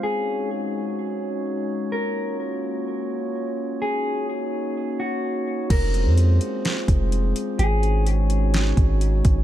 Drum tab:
CC |--------|--------|--------|x-------|
HH |--------|--------|--------|xxxxxxxx|
SD |--------|--------|--------|----o---|
BD |--------|--------|--------|o----o--|

CC |--------|
HH |xxxxxxxx|
SD |----o---|
BD |-----o-o|